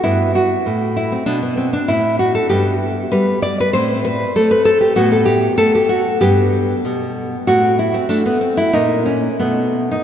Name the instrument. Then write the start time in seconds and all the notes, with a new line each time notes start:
nylon-string guitar
0.04 G2 B3 E4
0.35 F#4
0.66 A2
0.96 E4
1.12 C4
1.26 B2 D4
1.43 B3
1.57 C4
1.73 D4
1.88 A2 E4
2.19 F#4
2.35 A4
2.49 G2 B3 G4
3.12 G3 B4
3.42 D5
3.60 B4
3.73 A2 C4 C5
4.05 B4
4.36 A3 A4
4.51 B4
4.65 A4
4.81 G4
4.96 A2 B3 F#4
5.12 A4
5.25 G4
5.58 A3 A4
5.75 G4
5.89 F#4
6.21 G2 B3 G4
6.85 B2
7.47 A2 C4 F#4
7.79 E4
7.94 C4
8.09 A3 D4
8.26 B3
8.41 C4
8.57 E4
8.73 A#2 A#3 D#4
9.05 C#4
9.39 B2 A3 B3
9.91 D#4